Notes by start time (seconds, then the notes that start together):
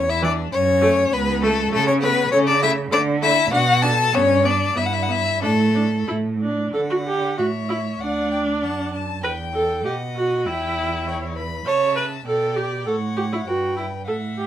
Already playing: E2 C#5
0.09 E4 E5
0.22 E3 D4 D5
0.52 F#2 C#4 C#5
0.81 A3
1.12 C#2 B3 B4
1.42 A3 A4
1.72 C#3 A3 A4
1.87 C#4 C#5
2.02 A3 B3 B4
2.31 C#3 A3 C#4 C#5
2.47 D4 D5
2.62 A3 E4 E5
2.91 D3 A3 D4 D5
3.22 A3 E4 E5
3.52 B2 D4 F#4 F#5
3.82 D4 A4 A5
4.13 G2 B3 C#4 C#5
4.44 B3 D4 D5
4.75 G2 B3 E4 E5
4.86 F#5
4.93 E5
5.02 F#5
5.09 B3 E5
5.42 A2 A3 D4 A4
5.75 D4
6.08 A2 E4
6.41 D4
6.73 D3 A4 F#5
6.90 F#4
7.07 G4
7.38 A2 F#4 C#5 E5
7.69 E4
8.00 D2 D4 D5 F#5
8.31 G5
8.62 F#2 F#5 A5
8.93 A5
9.23 E2 B4 G5
9.54 A4
9.85 B2 G4 D#5 F#5
10.16 F#4
10.46 E2 E4 E5 G5
11.06 C#5 G5
11.35 B4 B5
11.65 C#3 C#5 E5 A5
11.96 B4
12.26 B2 A4 D5 G5
12.56 G4
12.86 A2 A4 C#5 F#5
13.17 G4
13.33 E4
13.47 G2 F#4 B4 G5
13.77 E4
14.08 A2 A4 E5 F#5
14.38 G4